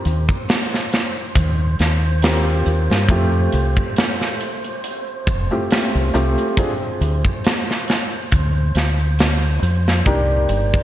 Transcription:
Already playing: synth texture C5
0.05 fingered electric bass D#2, closed hi-hat, maracas
0.29 kick, maracas
0.49 snare, closed hi-hat, maracas
0.73 snare, maracas
0.92 snare, closed hi-hat, maracas
1.16 maracas
1.35 fingered electric bass D#2, kick, closed hi-hat, maracas
1.59 maracas
1.79 fingered electric bass D#2, snare, closed hi-hat, maracas
2.03 maracas
2.22 felt piano A#3 C4 F4 G4, snare, closed hi-hat, maracas
2.46 maracas
2.66 fingered electric bass D#2, closed hi-hat, maracas
2.90 fingered electric bass G2, snare, maracas
3.09 fingered electric bass F2, felt piano A3 C4 F4 G4, kick, closed hi-hat, maracas
3.33 maracas
3.52 fingered electric bass C2, closed hi-hat, maracas
3.76 kick, maracas
3.96 snare, closed hi-hat, maracas
4.21 snare, maracas
4.40 closed hi-hat, maracas
4.64 closed hi-hat, maracas
4.84 closed hi-hat, maracas
5.07 maracas
5.27 fingered electric bass F1, kick, closed hi-hat, maracas
5.51 felt piano A3 C4 F4 G4, maracas
5.71 snare, closed hi-hat, maracas
5.95 fingered electric bass C2, maracas
6.14 fingered electric bass C2, felt piano A3 C4 F4 G4, closed hi-hat, maracas
6.38 closed hi-hat, maracas
6.57 felt piano C4 D4 F4 G#4, kick, closed hi-hat, maracas
6.82 maracas
7.01 fingered electric bass D2, closed hi-hat, maracas
7.25 kick, maracas
7.44 snare, closed hi-hat, maracas
7.69 snare, maracas
7.88 snare, closed hi-hat, maracas
8.12 maracas
8.32 fingered electric bass D2, kick, closed hi-hat, maracas
8.57 maracas
8.75 fingered electric bass D2, snare, closed hi-hat, maracas
8.99 maracas
9.19 snare, closed hi-hat, maracas
9.43 maracas
9.62 fingered electric bass F2, closed hi-hat, maracas
9.87 snare, maracas
10.05 fingered electric bass C2, felt piano A#3 D4 D#4 G4, vibraphone D5, kick, closed hi-hat, maracas
10.30 maracas
10.49 fingered electric bass G1, closed hi-hat, maracas
10.73 kick, maracas

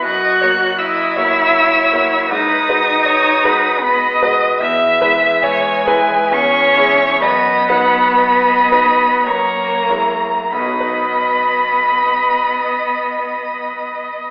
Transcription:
0.02 grand piano F#2, cello F#4, violin D#5 F#6
0.41 grand piano A#3 F#4 C#5, violin C#5
0.78 cello E4, violin D#5 E6
1.16 grand piano A#3 F#4 C#5, violin C#5
1.92 grand piano A#3 F#4 C#5
2.29 grand piano G#2, cello D#4, violin B4 D#6
2.69 grand piano G#3 F#4 B4, violin D#5
3.06 violin C#5
3.44 grand piano G#3 F#4 B4, violin B4
3.82 cello B3, violin D#5 B5
4.21 grand piano G#3 F#4 B4
4.60 grand piano E2, violin E5
5.01 grand piano G#3 E4 B4
5.41 cello G#3, violin C#5 G#5
5.87 grand piano G#3 E4 B4, violin B4
6.32 grand piano E2, cello C#4, violin C#5 C#6
6.76 grand piano G#3 E4 G#4
7.22 grand piano F#2, cello B3, violin D#5 B5
7.69 grand piano F#3 D#4 B4, violin F#5
8.18 violin D#5
8.72 grand piano F#3 D#4 B4
9.26 grand piano F#2, cello A#3, violin C#5 A#5
9.89 grand piano G#3 E4 C#5
10.52 grand piano B1, cello B3, violin D#5 B5
10.59 grand piano B2
10.66 grand piano F#3
10.73 grand piano D#4
10.80 grand piano B4
10.87 grand piano D#5

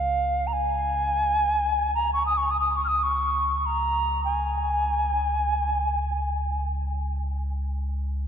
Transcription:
Already playing: synth drone C#2, ocarina F5
0.47 ocarina A#5
0.53 ocarina G#5
1.95 ocarina A#5
2.13 ocarina C#6
2.26 ocarina D#6
2.37 ocarina C#6
2.51 ocarina D#6
2.60 ocarina D#6
2.70 ocarina D#6
2.76 ocarina C#6
2.85 ocarina D#6 F6
3.03 ocarina C#6
3.58 ocarina C#6
3.66 ocarina A#5
4.25 ocarina G#5

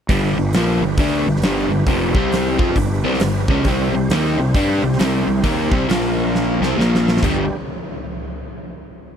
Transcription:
0.09 fingered electric bass G1, overdriven electric guitar G2 D3 G3, tonewheel organ B3 D4 G4 B4, kick, open hi-hat
0.38 fingered electric bass G1, overdriven electric guitar G2 D3
0.53 fingered electric bass A#1, overdriven electric guitar A#2 F3 A#3, snare, open hi-hat
0.81 fingered electric bass G1, overdriven electric guitar G2 D3
0.97 fingered electric bass D2, overdriven electric guitar D3 A3 D4, kick, open hi-hat
1.27 fingered electric bass G1, overdriven electric guitar G2 D3
1.36 snare
1.42 fingered electric bass G1, overdriven electric guitar G2 D3 G3, snare, open hi-hat
1.70 fingered electric bass G1, overdriven electric guitar G2 D3
1.87 fingered electric bass F1, overdriven electric guitar F2 C3 F3, kick, open hi-hat
2.14 fingered electric bass C2, overdriven electric guitar C3 G3 C4, tonewheel organ G3 C4 G4 C5, kick
2.32 snare, open hi-hat
2.59 fingered electric bass F2, overdriven electric guitar F3 C4 F4, tonewheel organ C4 D#4 G#4 C5, kick
2.70 tonewheel organ B3 D4 G4 B4
2.76 fingered electric bass G1, overdriven electric guitar G2 D3, kick, open hi-hat
3.04 fingered electric bass C2, overdriven electric guitar C3 G3 C4
3.14 snare
3.20 fingered electric bass G1, overdriven electric guitar G2 D3, snare, open hi-hat
3.48 fingered electric bass C#2, overdriven electric guitar C#3 G#3 C#4, kick
3.64 fingered electric bass C2, overdriven electric guitar C3 G3 C4, tonewheel organ G3 C4 G4 C5, kick, open hi-hat
3.92 fingered electric bass C2, overdriven electric guitar C3 G3
4.09 fingered electric bass D#2, overdriven electric guitar D#3 A#3 D#4, snare, open hi-hat
4.38 fingered electric bass C2, overdriven electric guitar C3 G3
4.55 fingered electric bass G2, overdriven electric guitar G3 D4 G4, kick, open hi-hat
4.83 fingered electric bass C2, overdriven electric guitar C3 G3
4.93 snare
4.99 fingered electric bass C2, overdriven electric guitar C3 G3 C4, snare, open hi-hat
5.27 fingered electric bass C2, overdriven electric guitar C3 G3
5.44 fingered electric bass D#2, overdriven electric guitar D#3 A#3 D#4, kick, open hi-hat
5.72 fingered electric bass C2, overdriven electric guitar C3 G3 C4, kick
5.89 fingered electric bass A#1, overdriven electric guitar A#2 F3 A#3, tonewheel organ F3 A#3 F4 A#4, snare, open hi-hat
6.35 snare
6.61 fingered electric bass C2, overdriven electric guitar C3 G3 C4, snare
6.78 fingered electric bass A#1, overdriven electric guitar A#2 F3 A#3, tonewheel organ F3 A#3 F4 A#4, snare
6.95 snare
7.08 snare
7.17 snare
7.22 fingered electric bass G1, overdriven electric guitar G2 D3 G3, tonewheel organ G3 B3 D4 G4, kick, floor tom, crash

